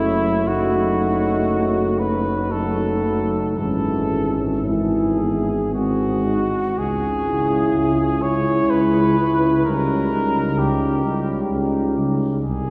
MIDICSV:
0, 0, Header, 1, 6, 480
1, 0, Start_track
1, 0, Key_signature, 4, "minor"
1, 0, Tempo, 983607
1, 231, Time_signature, 3, 2, 24, 8
1, 715, Tempo, 1041667
1, 1195, Tempo, 1081081
1, 2155, Tempo, 1054482
1, 3115, Tempo, 958466
1, 4555, Tempo, 927357
1, 6132, End_track
2, 0, Start_track
2, 0, Title_t, "Cornet"
2, 0, Program_c, 0, 56
2, 0, Note_on_c, 0, 64, 66
2, 232, Note_on_c, 0, 66, 57
2, 239, Note_off_c, 0, 64, 0
2, 957, Note_on_c, 0, 71, 61
2, 964, Note_off_c, 0, 66, 0
2, 1199, Note_on_c, 0, 69, 50
2, 1206, Note_off_c, 0, 71, 0
2, 1671, Note_off_c, 0, 69, 0
2, 1675, Note_on_c, 0, 69, 57
2, 2011, Note_off_c, 0, 69, 0
2, 2158, Note_on_c, 0, 68, 39
2, 2623, Note_off_c, 0, 68, 0
2, 2642, Note_on_c, 0, 66, 47
2, 3118, Note_on_c, 0, 68, 62
2, 3126, Note_off_c, 0, 66, 0
2, 3837, Note_on_c, 0, 73, 66
2, 3845, Note_off_c, 0, 68, 0
2, 4078, Note_on_c, 0, 71, 66
2, 4086, Note_off_c, 0, 73, 0
2, 4552, Note_off_c, 0, 71, 0
2, 4557, Note_on_c, 0, 70, 63
2, 5037, Note_on_c, 0, 67, 53
2, 5044, Note_off_c, 0, 70, 0
2, 5513, Note_off_c, 0, 67, 0
2, 5997, Note_on_c, 0, 68, 66
2, 6132, Note_off_c, 0, 68, 0
2, 6132, End_track
3, 0, Start_track
3, 0, Title_t, "French horn section"
3, 0, Program_c, 1, 60
3, 0, Note_on_c, 1, 61, 43
3, 151, Note_off_c, 1, 61, 0
3, 234, Note_on_c, 1, 63, 49
3, 1177, Note_off_c, 1, 63, 0
3, 1198, Note_on_c, 1, 63, 46
3, 1661, Note_off_c, 1, 63, 0
3, 1672, Note_on_c, 1, 61, 38
3, 2153, Note_on_c, 1, 64, 50
3, 2155, Note_off_c, 1, 61, 0
3, 2380, Note_off_c, 1, 64, 0
3, 2402, Note_on_c, 1, 59, 42
3, 2639, Note_on_c, 1, 60, 35
3, 2640, Note_off_c, 1, 59, 0
3, 2880, Note_off_c, 1, 60, 0
3, 2882, Note_on_c, 1, 63, 38
3, 3115, Note_off_c, 1, 63, 0
3, 3359, Note_on_c, 1, 64, 41
3, 3832, Note_off_c, 1, 64, 0
3, 3844, Note_on_c, 1, 64, 37
3, 4310, Note_off_c, 1, 64, 0
3, 4324, Note_on_c, 1, 64, 42
3, 4552, Note_off_c, 1, 64, 0
3, 4563, Note_on_c, 1, 63, 38
3, 4795, Note_off_c, 1, 63, 0
3, 4802, Note_on_c, 1, 63, 39
3, 5268, Note_off_c, 1, 63, 0
3, 5276, Note_on_c, 1, 63, 41
3, 5745, Note_off_c, 1, 63, 0
3, 5754, Note_on_c, 1, 63, 41
3, 5988, Note_off_c, 1, 63, 0
3, 6132, End_track
4, 0, Start_track
4, 0, Title_t, "Euphonium"
4, 0, Program_c, 2, 58
4, 0, Note_on_c, 2, 57, 46
4, 214, Note_off_c, 2, 57, 0
4, 235, Note_on_c, 2, 57, 47
4, 1120, Note_off_c, 2, 57, 0
4, 1198, Note_on_c, 2, 57, 47
4, 1669, Note_on_c, 2, 56, 38
4, 1675, Note_off_c, 2, 57, 0
4, 2152, Note_off_c, 2, 56, 0
4, 2155, Note_on_c, 2, 56, 39
4, 2630, Note_off_c, 2, 56, 0
4, 2640, Note_on_c, 2, 56, 40
4, 2955, Note_off_c, 2, 56, 0
4, 3354, Note_on_c, 2, 56, 39
4, 3829, Note_off_c, 2, 56, 0
4, 3837, Note_on_c, 2, 56, 39
4, 4306, Note_off_c, 2, 56, 0
4, 4320, Note_on_c, 2, 56, 37
4, 4550, Note_off_c, 2, 56, 0
4, 4559, Note_on_c, 2, 55, 38
4, 4795, Note_off_c, 2, 55, 0
4, 4798, Note_on_c, 2, 55, 40
4, 5266, Note_off_c, 2, 55, 0
4, 5279, Note_on_c, 2, 55, 39
4, 5747, Note_off_c, 2, 55, 0
4, 5758, Note_on_c, 2, 55, 38
4, 5990, Note_off_c, 2, 55, 0
4, 6132, End_track
5, 0, Start_track
5, 0, Title_t, "Trombone"
5, 0, Program_c, 3, 57
5, 0, Note_on_c, 3, 54, 44
5, 155, Note_off_c, 3, 54, 0
5, 238, Note_on_c, 3, 54, 41
5, 1179, Note_off_c, 3, 54, 0
5, 1197, Note_on_c, 3, 54, 40
5, 1661, Note_off_c, 3, 54, 0
5, 1667, Note_on_c, 3, 52, 38
5, 2143, Note_off_c, 3, 52, 0
5, 2155, Note_on_c, 3, 52, 37
5, 2630, Note_off_c, 3, 52, 0
5, 2640, Note_on_c, 3, 51, 33
5, 2955, Note_off_c, 3, 51, 0
5, 3358, Note_on_c, 3, 49, 43
5, 3831, Note_off_c, 3, 49, 0
5, 3843, Note_on_c, 3, 49, 36
5, 4309, Note_off_c, 3, 49, 0
5, 4320, Note_on_c, 3, 49, 35
5, 4550, Note_off_c, 3, 49, 0
5, 4557, Note_on_c, 3, 49, 37
5, 4794, Note_off_c, 3, 49, 0
5, 4799, Note_on_c, 3, 49, 43
5, 5267, Note_off_c, 3, 49, 0
5, 5285, Note_on_c, 3, 49, 36
5, 5750, Note_off_c, 3, 49, 0
5, 5756, Note_on_c, 3, 49, 38
5, 5990, Note_off_c, 3, 49, 0
5, 6132, End_track
6, 0, Start_track
6, 0, Title_t, "Tuba"
6, 0, Program_c, 4, 58
6, 0, Note_on_c, 4, 30, 46
6, 213, Note_off_c, 4, 30, 0
6, 230, Note_on_c, 4, 30, 46
6, 1594, Note_off_c, 4, 30, 0
6, 1670, Note_on_c, 4, 32, 37
6, 2943, Note_off_c, 4, 32, 0
6, 3115, Note_on_c, 4, 37, 47
6, 3545, Note_off_c, 4, 37, 0
6, 3600, Note_on_c, 4, 37, 51
6, 4024, Note_off_c, 4, 37, 0
6, 4077, Note_on_c, 4, 37, 46
6, 4496, Note_off_c, 4, 37, 0
6, 4557, Note_on_c, 4, 37, 44
6, 4983, Note_off_c, 4, 37, 0
6, 5041, Note_on_c, 4, 37, 50
6, 5459, Note_off_c, 4, 37, 0
6, 5517, Note_on_c, 4, 37, 48
6, 5939, Note_off_c, 4, 37, 0
6, 5996, Note_on_c, 4, 36, 49
6, 6132, Note_off_c, 4, 36, 0
6, 6132, End_track
0, 0, End_of_file